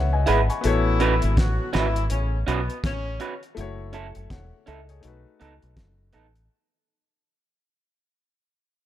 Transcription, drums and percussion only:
0.27 closed hi-hat
0.50 closed hi-hat
0.64 closed hi-hat
1.00 closed hi-hat
1.22 closed hi-hat
1.37 kick, snare, closed hi-hat
1.73 snare, closed hi-hat
1.96 closed hi-hat
2.10 closed hi-hat
2.48 closed hi-hat
2.70 closed hi-hat
2.84 kick, snare, closed hi-hat
3.20 closed hi-hat
3.43 closed hi-hat
3.57 closed hi-hat
3.93 closed hi-hat
4.15 closed hi-hat
4.30 kick, snare, closed hi-hat
4.67 closed hi-hat
4.89 closed hi-hat
5.03 closed hi-hat
5.41 closed hi-hat
5.62 closed hi-hat
5.77 kick, snare, closed hi-hat
6.13 closed hi-hat
6.36 closed hi-hat

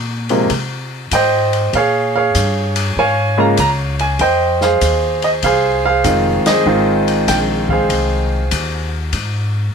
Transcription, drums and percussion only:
0.29 ride
0.50 kick, ride
1.11 kick, hi-hat pedal, ride
1.53 ride
1.73 kick, ride
2.35 kick, hi-hat pedal, ride
2.76 ride
2.97 kick
3.57 kick, hi-hat pedal, ride
3.99 ride
4.19 kick, ride
4.61 snare
4.81 kick, hi-hat pedal, ride
5.22 ride
5.42 kick, ride
6.04 kick, hi-hat pedal, ride
6.46 snare, ride
7.08 ride
7.28 kick, snare, hi-hat pedal, ride
7.69 kick
7.90 kick, ride
8.51 kick, hi-hat pedal, ride
9.13 kick, ride

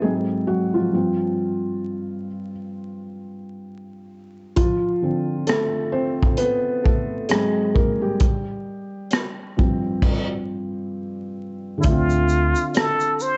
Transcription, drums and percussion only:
4.56 kick, closed hi-hat
5.47 cross-stick, closed hi-hat
6.23 kick
6.37 closed hi-hat
6.86 kick
7.29 cross-stick, closed hi-hat
7.76 kick
8.20 kick, closed hi-hat
9.11 cross-stick, closed hi-hat
9.59 kick
10.02 kick, crash
11.83 kick, closed hi-hat, shaker
12.10 shaker
12.29 shaker
12.55 shaker
12.75 cross-stick, closed hi-hat, shaker
13.00 shaker
13.20 shaker

